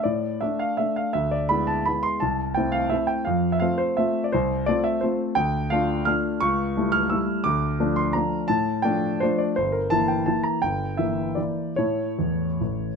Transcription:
<<
  \new Staff \with { instrumentName = "Grand piano" } { \time 3/4 \key f \lydian \tempo 4 = 169 d''4 e''8 f''8 e''8 f''8 | e''8 d''8 b''8 a''8 b''8 c'''8 | a''4 g''8 f''8 e''8 g''8 | f''8. e''16 f''8 c''8 e''8. d''16 |
c''4 d''8 e''8 c''8 r8 | \key d \minor g''4 f''4 f'''4 | cis'''4. f'''8 e'''4 | d'''4. c'''8 bes''4 |
a''4 g''4 c''8 d''8 | c''8 bes'8 a''8 g''8 a''8 bes''8 | g''4 e''4 d''4 | cis''2. | }
  \new Staff \with { instrumentName = "Grand piano" } { \time 3/4 \key f \lydian a,4 <a d'>4 <a d'>4 | d,4 <gis b e'>4 <gis b e'>4 | c,4 <a c' e'>4 <a c' e'>4 | f,4 <a c' f'>4 <a c' f'>4 |
c,4 <a c' f'>4 <a c' f'>4 | \key d \minor d,4 <a d' f'>4 <a d' f'>4 | cis,4 <g a e'>4 <g a e'>4 | d,4 <f a d'>4 <f a d'>4 |
a,4 <f a d'>4 <f a d'>4 | g,,4 <e bes e'>4 <e bes e'>4 | g,,4 <e bes e'>4 <e bes e'>4 | <a, a e'>4 e,4 a,,4 | }
>>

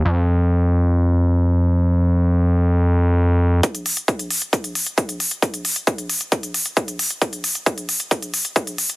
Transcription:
<<
  \new Staff \with { instrumentName = "Analog synth bass" } { \clef bass \time 4/4 \key ees \lydian \tempo 4 = 134 f,1~ | f,1 | r1 | r1 |
r1 | }
  \new DrumStaff \with { instrumentName = "Drums" } \drummode { \time 4/4 r4 r4 r4 r4 | r4 r4 r4 r4 | <hh bd>16 hh16 hho16 hh16 <hh bd>16 hh16 hho16 hh16 <hh bd>16 hh16 hho16 hh16 <hh bd>16 hh16 hho16 hh16 | <hh bd>16 hh16 hho16 hh16 <hh bd>16 hh16 hho16 hh16 <hh bd>16 hh16 hho16 hh16 <hh bd>16 hh16 hho16 hh16 |
<hh bd>16 hh16 hho16 hh16 <hh bd>16 hh16 hho16 hh16 <hh bd>16 hh16 hho16 hh16 <hh bd>16 hh16 hho16 hh16 | }
>>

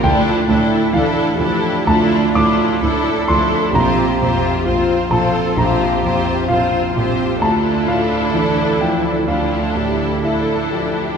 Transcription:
<<
  \new Staff \with { instrumentName = "Violin section" } { \time 4/4 \key d \minor \tempo 4 = 65 a'8 a'8 a'8 a'8 a'8 a'8 a'8 a'8 | c''8 c''8 c''8 c''8 c''8 c''8 c''8 c''8 | a'2 a'4 a'4 | }
  \new Staff \with { instrumentName = "Cello section" } { \time 4/4 \key d \minor f'8 e'8 a'8 g'8 f'4 a'4 | g'4 f'8 a'8 g'4 f'8 g'8 | f'4 a'8 e'8 f'8 g'8 a'8 g'8 | }
  \new Staff \with { instrumentName = "Violin section" } { \time 4/4 \key d \minor e'8 e'8 e'8 e'8 e'8 e'8 e'8 e'8 | f'8 f'8 f'8 f'8 f'8 f'8 f'8 f'8 | e'2 e'4 e'4 | }
  \new Staff \with { instrumentName = "Viola section" } { \time 4/4 \key d \minor d'8 d'8 d'8 d'8 d'8 d'8 d'8 d'8 | c'8 c'8 c'8 c'8 c'8 c'8 c'8 c'8 | d'2 d'4 d'4 | }
  \new Staff \with { instrumentName = "Grand piano" } { \time 4/4 \key d \minor g''4 f''4 a''8 d'''4 c'''8 | bes''4. a''8 bes''4 f''4 | a''8 f''4 g''8 f''4 e''4 | }
  \new Staff \with { instrumentName = "Grand piano" } { \clef bass \time 4/4 \key d \minor d,8 a,8 e8 f8 d,8 a,8 e'8 f8 | bes,,8 f,8 f'8 f8 bes,,8 f,8 f'8 f8 | d,8 a,8 e8 f8 d,8 a,8 e'8 f8 | }
  \new Staff \with { instrumentName = "Double bass section" } { \clef bass \time 4/4 \key d \minor d,8 d,8 d,8 d,8 d,8 d,8 d,8 d,8 | bes,,8 bes,,8 bes,,8 bes,,8 bes,,8 bes,,8 bes,,8 bes,,8 | d,1 | }
>>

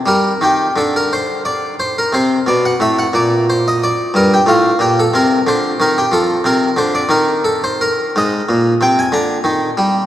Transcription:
<<
  \new Staff \with { instrumentName = "Harpsichord" } { \time 6/8 \key g \minor \tempo 4. = 60 bes'8 g'8 a'16 bes'16 c''8 d''8 c''16 bes'16 | c''8 d''16 fis''16 e''16 fis''16 d''8 c''16 ees''16 d''8 | bes'16 g'16 f'8 g'16 a'16 bes'8 c''8 bes'16 g'16 | a'8 bes'8 c''16 d''16 bes'8 a'16 c''16 bes'8 |
\key aes \lydian ees''4 g''16 aes''16 bes''4. | }
  \new Staff \with { instrumentName = "Harpsichord" } { \clef bass \time 6/8 \key g \minor g8 ees8 d2 | c8 b,8 a,8 bes,4. | g,8 a,8 bes,8 c8 d8 ees8 | f8 c8 d8 ees4. |
\key aes \lydian aes,8 bes,8 c8 d8 ees8 g8 | }
>>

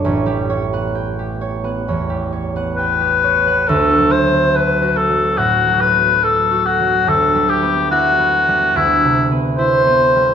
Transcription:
<<
  \new Staff \with { instrumentName = "Cor anglais" } { \time 4/4 \key d \major \tempo 4 = 71 r2. b'4 | a'8 c''8 b'8 a'8 fis'8 b'8 a'8 fis'8 | a'8 g'8 fis'4 e'8 r8 c''4 | }
  \new Staff \with { instrumentName = "Harp" } { \time 4/4 \key d \major <a' cis'' a''>16 g'16 cis''16 fis''16 g''16 g'16 cis''16 fis''16 cis''16 g'16 cis''16 fis''16 g''16 g'16 cis''16 fis''16~ | fis''1 | r1 | }
  \new Staff \with { instrumentName = "Harp" } { \time 4/4 \key d \major <a,, a>16 g8 b4 b16 e,16 g8 b4 b16 | \tuplet 3/2 { d,8 fis8 b8 a'8 fis'8 fis8 a,8 fis8 b8 a'8 fis'8 fis8 } | \tuplet 3/2 { d,8 g8 b8 e'8 b8 g8 d,8 c8 b8 e'8 b8 g8 } | }
>>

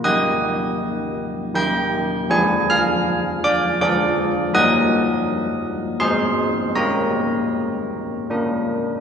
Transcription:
\new Staff \with { instrumentName = "Church bells" } { \time 3/4 \key ees \major \tempo 4 = 80 << { <ees'' ees'''>2 <g'' g'''>4 | aes''8 <f'' f'''>4 <d'' d'''>8 <d'' d'''>4 | <ees'' ees'''>2 <c'' c'''>4 | <bes' bes''>2 r4 | } \\ { <ees bes g'>2 <ees bes g'>4 | <f d' aes'>2 <f d' aes'>4 | <g ees' bes'>2 <aes ees' aes'>4 | <bes ees' g'>2 <bes d' bes'>4 | } >> }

